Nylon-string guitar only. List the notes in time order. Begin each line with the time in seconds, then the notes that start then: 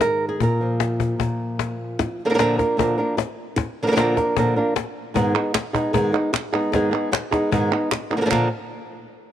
Already playing: G#2 D#3 G#3 A#3
0.01 A#4
0.29 G#4
0.40 A#2 A#4
0.61 F3
1.19 A#2
1.99 muted nylon-string guitar stroke
2.25 D3 F3 A#3 D4 A#4
2.30 D3 F3 A#3 D4 A#4
2.34 D3 F3 A#3 D4 A#4
2.38 A#2 D3 F3 A#3 D4 A#4
2.58 F3 A#3 D4 A#4
2.77 A#2 D3 F3 A#3 D4 A#4
2.98 F3 A#3 D4 A#4
3.17 muted nylon-string guitar stroke
3.56 muted nylon-string guitar stroke
3.83 D3 F3 A#3 D4 A#4
3.87 D3 F3 A#3 D4 A#4
3.92 D3 F3 A#3 D4 A#4
3.96 A#2 D3 F3 A#3 D4 A#4
4.17 F3 A#3 D4 A#4
4.36 A#2 D3 F3 A#3 D4 A#4
4.56 F3 A#3 D4 A#4
4.76 muted nylon-string guitar stroke
5.14 G#2 D#3 G#3 B3 D#4 G#4
5.35 G#3 B3 D#4 G#4
5.54 muted nylon-string guitar stroke
5.73 G#3 B3 D#4 G#4
5.93 G#2 D#3 G#3 B3 D#4 G#4
6.12 G#3 B3 D#4 G#4
6.33 muted nylon-string guitar stroke
6.53 G#3 B3 D#4 G#4
6.72 G#2 D#3 G#3 B3 D#4 G#4
6.91 G#3 B3 D#4 G#4
7.11 muted nylon-string guitar stroke
7.31 G#3 B3 D#4 G#4
7.51 G#2 D#3 G#3 B3 D#4 G#4
7.71 G#3 B3 D#4 G#4
7.91 muted nylon-string guitar stroke
8.11 G#3 B3 D#4 G#4
8.17 D3 F3 A#3 D4 A#4
8.21 D3 F3 A#3 D4 A#4
8.25 D3 F3 A#3 D4 A#4
8.30 A#2 D3 F3 A#3 D4 A#4